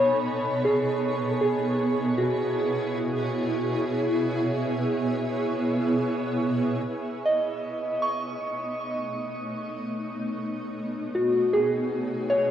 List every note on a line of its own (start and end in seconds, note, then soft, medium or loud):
0.00 12.51 B2 medium
0.00 12.51 B3 medium
0.00 0.64 D#4 medium
0.00 0.63 A4 medium
0.00 0.59 C#5 medium
0.00 12.51 C#5 medium
0.00 2.02 B5 medium
0.64 1.40 G#4 medium
1.26 6.88 E4 medium
1.41 3.97 G#4 soft
1.78 6.88 G#4 medium
2.18 4.74 F#4 soft
7.07 12.51 D#4 medium
7.25 9.81 D#5 soft
8.02 12.51 A3 medium
8.02 10.59 C#6 medium
11.15 12.51 F#4 soft
11.53 12.51 G#4 medium
12.30 12.51 C#5 medium